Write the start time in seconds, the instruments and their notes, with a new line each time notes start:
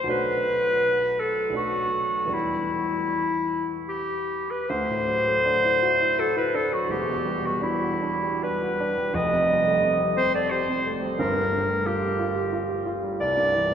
0.04 grand piano B1 F#3 A3
0.08 grand piano D4 F#4, clarinet B4
1.20 clarinet A4
1.50 grand piano B1 F#3 A3
1.54 grand piano D4 F#4, clarinet F#4
2.25 grand piano E2 E3 G3
2.29 grand piano D4 F#4, clarinet E4
3.88 clarinet G4
4.50 clarinet B4
4.69 grand piano D2, clarinet C5
4.89 grand piano A2
5.08 grand piano F#3
5.27 grand piano A3
5.46 grand piano D4
5.65 grand piano E4
5.83 grand piano F#4
6.01 grand piano E4
6.19 grand piano F#4, clarinet A4
6.37 grand piano E4, clarinet B4
6.54 grand piano D4, clarinet A4
6.72 grand piano F#3, clarinet F#4
6.89 grand piano E1 E2, clarinet G4
7.08 grand piano B2
7.25 grand piano G3
7.43 grand piano B2, clarinet F#4
7.61 grand piano D4, clarinet E4
7.81 grand piano F#4
8.02 grand piano D4
8.23 grand piano G3
8.43 grand piano D4, clarinet B4
8.62 grand piano F#4
8.80 grand piano D4
8.98 grand piano G3
9.14 grand piano F1 F2, clarinet D#5
9.33 grand piano C3
9.50 grand piano G3
9.67 grand piano A3
9.84 grand piano C4
10.00 grand piano G4
10.17 grand piano C4, clarinet C5
10.35 grand piano A4, clarinet D5
10.51 grand piano G4, clarinet C5
10.69 grand piano C4
10.86 grand piano A3
11.02 grand piano G3
11.18 grand piano G1 G2, clarinet A#4
11.36 grand piano D3
11.53 grand piano G3
11.69 grand piano A3
11.86 grand piano F4, clarinet G4
12.02 grand piano G4
12.19 grand piano F4
12.36 grand piano G4
12.53 grand piano F4
12.69 grand piano G4
12.86 grand piano F4
13.03 grand piano G3
13.20 grand piano C2, clarinet D5
13.37 grand piano G2
13.54 grand piano E3